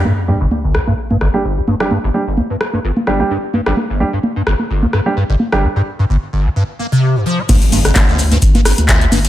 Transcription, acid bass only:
X:1
M:4/4
L:1/16
Q:"Swing 16ths" 1/4=129
K:Cm
V:1 name="Acid bass" clef=bass
G,, z G,, G,,, z G,,, A,, G,, z G,, G,,, z G,,, A,, G,, z | G,, G,,, z G,,, A,, G,, z G,, G,,, z G,,, A,, G,, z G,, G,,, | z G,,, A,, G,, z G,, G,,, z G,,, A,, G,, z G,, G,,, z G,,, | A,, G,, z G,, G,,, z G,,, A,, G,, z B, C,2 G,, F, B, |
G,, z G,, G,,, z G,,, A,, G,, z G,, G,,, z G,,, A,, G,, z |]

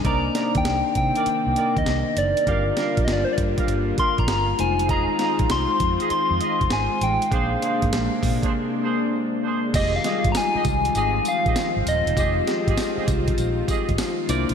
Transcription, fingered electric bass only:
X:1
M:4/4
L:1/16
Q:"Swing 16ths" 1/4=99
K:Fdor
V:1 name="Fingered electric bass" clef=bass
C,,2 z E,, C,, z C, z2 C,, z E,, C,, z _G,,, z | G,,,2 z B,,, G,,, z G,, z G,,,2 z B,,, G,,,2 F,,,2- | F,,,2 z B,,, C,, z F,, z2 F,, z F,,, A,,, z =A,,, z | B,,,2 z A,,, B,,, z B,, z8 z |
F,,,2 z A,,, z2 C,,2 A,,,2 z B,,, z A,,, E,,, =E,,, | F,,,2 z A,,, z2 C,,2 B,,,2 z A,,, z2 C,, =B,,, |]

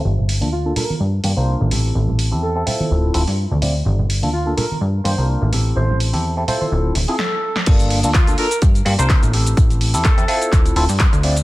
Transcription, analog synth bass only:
X:1
M:4/4
L:1/16
Q:"Swing 16ths" 1/4=126
K:Gdor
V:1 name="Analog synth bass" clef=bass
G,,,3 D,,3 z2 G,,2 G,, C,,2 A,,,3 | A,,,3 E,,3 z2 D,,,2 D,,, G,,2 D,,3 | G,,,3 D,,3 z2 G,,2 G,, C,,2 A,,,3 | A,,,3 E,,3 z2 D,,,2 D,,, z4 z |
G,,,3 D,,3 z2 G,,2 G,, C,,2 A,,,3 | A,,,3 E,,3 z2 D,,,2 D,,, G,,2 D,,3 |]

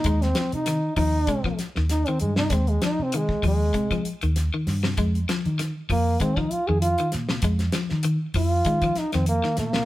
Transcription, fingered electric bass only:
X:1
M:4/4
L:1/16
Q:"Swing 16ths" 1/4=98
K:Fm
V:1 name="Fingered electric bass" clef=bass
E,,2 z C,2 z E,,2 C,2 z E,,2 z G,,2 | E,,2 z C,2 z E,,2 C,2 z E,,2 z G,,2 | F,,2 z E,2 z F,,2 E,2 z F,,2 z B,,2 | F,,2 z E,2 z F,,2 E,2 z F,,2 z B,,2 |]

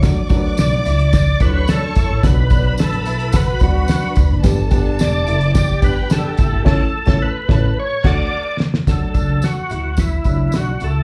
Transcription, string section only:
X:1
M:4/4
L:1/16
Q:1/4=109
K:D
V:1 name="String section"
[dd']8- [dd']2 [cc']6 | [Bb]16 | [Aa]8 [Gg]8 | [Aa]2 z [Aa]2 z [Aa]2 z2 [Ff]2 z4 |
z16 |]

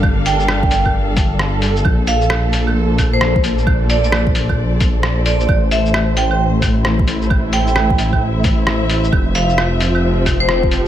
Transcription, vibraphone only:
X:1
M:4/4
L:1/16
Q:"Swing 16ths" 1/4=132
K:Aphr
V:1 name="Vibraphone"
z2 g6 z8 | z2 f2 z6 z c2 z3 | z2 d d z8 z2 d2 | z2 e2 z2 g2 z8 |
z2 g6 z8 | z2 f2 z6 z c2 z3 |]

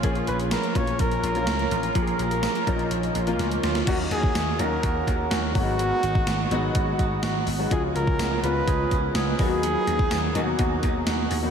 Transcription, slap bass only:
X:1
M:4/4
L:1/16
Q:1/4=125
K:Ebm
V:1 name="Slap bass" clef=bass
B,,,2 B,,,3 z B,,,2 B,,,2 B,,,2 D,,2 =A,,,2 | B,,,2 B,,,3 z B,,,2 B,,,2 B,,,2 D,,2 =D,,2 | E,,2 E,,2 E,,2 E,,2 E,,2 E,,2 E,,2 A,,,2- | A,,,2 A,,,2 A,,,2 A,,,2 A,,,2 A,,,2 A,,,2 A,,,2 |
D,,2 D,,2 D,,2 D,,2 D,,2 D,,2 D,,2 ^D,,2- | ^D,,2 D,,2 D,,2 D,,2 D,,2 D,,2 D,,2 D,,2 |]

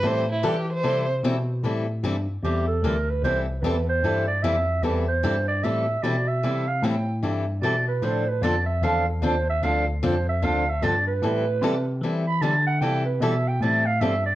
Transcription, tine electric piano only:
X:1
M:4/4
L:1/8
Q:"Swing" 1/4=150
K:Am
V:1 name="Tine electric piano" clef=bass
A,,2 E,2 C,2 B,,2 | A,,2 G,, G,, E,,2 D,,2 | C,,2 E,,2 G,,2 F,,2 | E,,2 G,,2 A,, A,, B,,2 |
C,2 A,,2 G,,2 B,,2 | A,,2 F,,2 E,,2 ^D,,2 | D,,2 F,,2 D,,2 G,,2 | A,,2 C,2 E,2 D,2 |
C,2 B,,2 A,,2 G,,2 |]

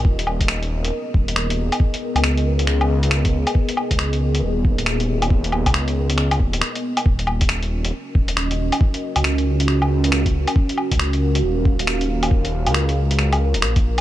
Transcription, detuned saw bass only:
X:1
M:4/4
L:1/16
Q:"Swing 16ths" 1/4=137
K:Ebm
V:1 name="Detuned saw bass" clef=bass
E,,,8 z2 E,,,4- E,,, z | z3 D,,12 z | z3 D,,4- D,, E,,,3 E,,,4- E,,,- | E,,,3 D,,6- D,, E,,,2 z4 |
E,,,8 z2 E,,,4- E,,, z | z3 D,,12 z | z3 D,,4- D,, E,,,3 E,,,4- E,,,- | E,,,3 D,,8 E,,, B,,,4 |]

